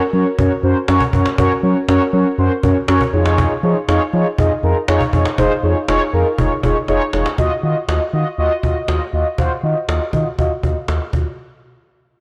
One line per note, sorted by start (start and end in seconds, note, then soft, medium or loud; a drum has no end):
0.13 0.24 F#3 loud
0.13 0.27 C#4 medium
0.13 0.27 F#4 medium
0.13 0.27 A#4 medium
0.13 0.27 C#5 loud
0.13 cajon slap soft
0.38 0.49 F#2 loud
0.38 0.52 C#4 medium
0.38 0.52 F#4 medium
0.38 0.52 A#4 medium
0.38 0.52 C#5 loud
0.38 cajon bass loud
0.63 0.74 F#2 loud
0.63 0.77 C#4 medium
0.63 0.77 F#4 medium
0.63 0.77 A#4 medium
0.63 0.77 C5 loud
0.63 cajon slap soft
0.88 0.99 F#2 loud
0.88 1.02 C#4 loud
0.88 1.02 F#4 loud
0.88 1.02 A#4 loud
0.88 1.02 C#5 loud
0.88 cajon slap loud
1.01 cajon bass medium
1.13 1.24 F#2 loud
1.13 1.27 C#4 medium
1.13 1.27 F#4 medium
1.13 1.27 A#4 medium
1.13 1.27 C#5 loud
1.13 cajon bass medium
1.26 cajon slap loud
1.38 1.49 F#2 loud
1.38 1.52 C#4 loud
1.38 1.52 F#4 loud
1.38 1.52 A#4 loud
1.38 1.52 C#5 loud
1.38 cajon bass loud
1.63 1.74 F#3 loud
1.63 1.77 C#4 medium
1.63 1.77 F#4 medium
1.63 1.77 A#4 medium
1.63 1.77 C#5 loud
1.63 cajon slap soft
1.88 1.99 F#2 loud
1.88 2.02 C#4 loud
1.88 2.02 F#4 loud
1.88 2.02 A#4 loud
1.88 2.02 C#5 loud
1.88 cajon slap loud
2.13 2.24 F#3 loud
2.13 2.27 C#4 medium
2.13 2.27 F#4 medium
2.13 2.27 A#4 medium
2.13 2.27 C#5 loud
2.13 cajon slap soft
2.38 2.49 F#2 loud
2.38 2.52 C#4 medium
2.38 2.52 F#4 medium
2.38 2.52 A#4 medium
2.38 2.52 C5 loud
2.38 cajon slap soft
2.63 2.74 F#2 loud
2.63 2.77 C#4 medium
2.63 2.77 F#4 medium
2.63 2.77 A#4 medium
2.63 2.77 C#5 loud
2.63 cajon bass medium
2.88 2.99 F#2 loud
2.88 3.02 C#4 loud
2.88 3.02 F#4 loud
2.88 3.02 A#4 loud
2.88 3.02 C#5 loud
2.88 cajon slap loud
3.01 cajon bass medium
3.13 3.46 F2 loud
3.13 3.53 D#4 medium
3.13 3.53 F4 medium
3.13 3.53 G#4 medium
3.13 3.53 C#5 loud
3.13 cajon slap soft
3.26 cajon slap loud
3.38 cajon bass loud
3.63 3.74 F3 loud
3.63 3.77 D#4 medium
3.63 3.77 F4 medium
3.63 3.77 G#4 medium
3.63 3.77 C#5 loud
3.63 cajon slap soft
3.88 3.99 F2 loud
3.88 4.02 D#4 loud
3.88 4.02 F4 loud
3.88 4.02 G#4 loud
3.88 4.02 C#5 loud
3.88 cajon slap loud
4.13 4.24 F3 loud
4.13 4.27 D#4 medium
4.13 4.27 F4 medium
4.13 4.27 G#4 medium
4.13 4.27 C#5 loud
4.13 cajon slap soft
4.38 4.49 F2 loud
4.38 4.52 D#4 medium
4.38 4.52 F4 medium
4.38 4.52 G#4 medium
4.38 4.52 D#5 loud
4.38 cajon bass loud
4.63 4.74 F2 loud
4.63 4.77 D#4 medium
4.63 4.77 F4 medium
4.63 4.77 G#4 medium
4.63 4.77 A#4 loud
4.63 cajon slap soft
4.88 4.99 F2 loud
4.88 5.02 D#4 loud
4.88 5.02 F4 loud
4.88 5.02 G#4 loud
4.88 5.02 C#5 loud
4.88 cajon slap loud
5.01 cajon bass medium
5.13 5.24 F2 loud
5.13 5.27 D#4 medium
5.13 5.27 F4 medium
5.13 5.27 G#4 medium
5.13 5.27 C#5 medium
5.13 cajon bass loud
5.25 cajon slap loud
5.38 5.49 F1 loud
5.38 5.52 D#4 loud
5.38 5.52 F4 loud
5.38 5.52 G#4 loud
5.38 5.52 C5 loud
5.38 cajon bass loud
5.63 5.74 F2 loud
5.63 5.77 D#4 medium
5.63 5.77 F4 medium
5.63 5.77 G#4 medium
5.63 5.77 C#5 loud
5.63 cajon slap soft
5.88 5.99 F1 loud
5.88 6.02 D#4 loud
5.88 6.02 F4 loud
5.88 6.02 G#4 loud
5.88 6.02 C#5 loud
5.88 cajon slap loud
6.13 6.24 F2 loud
6.13 6.27 D#4 medium
6.13 6.27 F4 medium
6.13 6.27 G#4 medium
6.13 6.27 A#4 loud
6.13 cajon slap soft
6.38 6.49 F1 loud
6.38 6.52 D#4 medium
6.38 6.52 F4 medium
6.38 6.52 G#4 medium
6.38 6.52 C#5 loud
6.38 cajon bass loud
6.63 6.74 F1 loud
6.63 6.77 D#4 medium
6.63 6.77 F4 medium
6.63 6.77 G#4 medium
6.63 6.77 C#5 medium
6.63 cajon bass medium
6.88 6.99 F1 loud
6.88 7.02 D#4 loud
6.88 7.02 F4 loud
6.88 7.02 G#4 loud
6.88 7.02 C#5 loud
6.88 cajon slap medium
7.13 7.24 F1 loud
7.13 7.27 D#4 medium
7.13 7.27 F4 medium
7.13 7.27 G#4 medium
7.13 7.27 C#5 loud
7.13 cajon slap loud
7.26 cajon slap loud
7.38 7.49 D#2 loud
7.38 7.52 F4 loud
7.38 7.52 F#4 loud
7.38 7.52 D#5 loud
7.38 cajon bass loud
7.63 7.74 D#3 loud
7.63 7.77 F4 medium
7.63 7.77 F#4 medium
7.63 7.77 D#5 medium
7.88 7.99 D#2 loud
7.88 8.02 F4 medium
7.88 8.02 F#4 medium
7.88 8.02 D#5 medium
7.88 cajon slap loud
8.13 8.24 D#3 loud
8.13 8.27 F4 medium
8.13 8.27 F#4 medium
8.13 8.27 D#5 loud
8.38 8.49 D#2 loud
8.38 8.52 F4 loud
8.38 8.52 F#4 loud
8.38 8.52 D#5 loud
8.63 8.74 D#2 loud
8.63 8.77 F4 medium
8.63 8.77 F#4 medium
8.63 8.77 D#5 medium
8.63 cajon bass medium
8.88 8.99 D#2 loud
8.88 9.02 F4 medium
8.88 9.02 F#4 medium
8.88 9.02 D#5 loud
8.88 cajon slap loud
9.13 9.24 D#2 loud
9.13 9.27 F4 medium
9.13 9.27 F#4 medium
9.13 9.27 D#5 medium
9.38 9.49 D#2 medium
9.38 9.52 F4 loud
9.38 9.52 F#4 loud
9.38 9.52 C5 loud
9.38 cajon bass loud
9.63 9.74 D#3 loud
9.63 9.77 F4 medium
9.63 9.77 F#4 medium
9.63 9.77 D#5 medium
9.88 9.99 D#2 loud
9.88 10.02 F4 medium
9.88 10.03 F#4 medium
9.88 10.02 D#5 medium
9.88 cajon slap loud
10.13 10.24 D#3 loud
10.13 10.27 F4 medium
10.13 10.27 F#4 medium
10.13 10.27 D#5 medium
10.13 cajon bass medium
10.38 10.49 D#2 loud
10.38 10.52 F4 loud
10.38 10.52 F#4 loud
10.38 10.52 D#5 loud
10.38 cajon bass medium
10.63 10.74 D#2 loud
10.63 10.77 F4 medium
10.63 10.78 F#4 medium
10.63 10.78 D#5 medium
10.63 cajon bass medium
10.88 10.99 D#2 loud
10.88 11.02 F4 medium
10.88 11.02 F#4 medium
10.88 11.02 D#5 loud
10.88 cajon slap loud
11.13 11.24 D#2 loud
11.13 11.27 F4 medium
11.13 11.27 F#4 medium
11.13 11.27 D#5 medium
11.13 cajon bass medium